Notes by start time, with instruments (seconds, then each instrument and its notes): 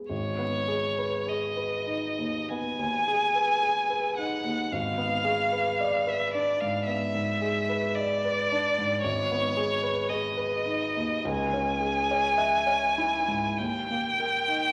Already playing: grand piano G#3 B3 G#4
0.10 grand piano G#1, violin C#5
0.38 grand piano B3
0.68 grand piano G#4
0.98 grand piano B4
1.27 grand piano G#4, violin D#5
1.57 grand piano B4
1.87 grand piano D#4
2.18 grand piano D#2
2.49 grand piano B3, violin G#5
2.79 grand piano D#2
3.08 grand piano G#4
3.35 grand piano B4
3.63 grand piano G#4
3.90 grand piano B4
4.17 grand piano D#4, violin F#5
4.44 grand piano D#2
4.72 grand piano G#1, violin F5
4.98 grand piano B3
5.24 grand piano G#4
5.52 grand piano B4
5.80 grand piano D5
6.06 grand piano B4, violin E5
6.34 grand piano D4, violin D5
6.60 grand piano G#2, violin F5
6.87 grand piano B3, violin E5
7.15 grand piano G#2
7.42 grand piano G#4
7.69 grand piano B4
7.95 violin D5, grand piano D5
8.25 grand piano B4
8.52 grand piano D4
8.78 grand piano G#2
9.02 grand piano G#1, violin C#5
9.31 grand piano B3
9.57 grand piano G#4
9.83 grand piano B4
10.09 grand piano G#4, violin D#5
10.37 grand piano B4
10.66 grand piano D#4
10.96 grand piano D#2
11.25 grand piano C#2, violin G#5
11.53 grand piano C#4
11.81 grand piano G#4
12.11 grand piano C#5
12.38 grand piano E5
12.67 grand piano C#5
12.98 grand piano E4
13.28 grand piano G#2
13.57 grand piano D#2, violin G5
13.90 grand piano A#3
14.20 grand piano A#4
14.48 grand piano D#4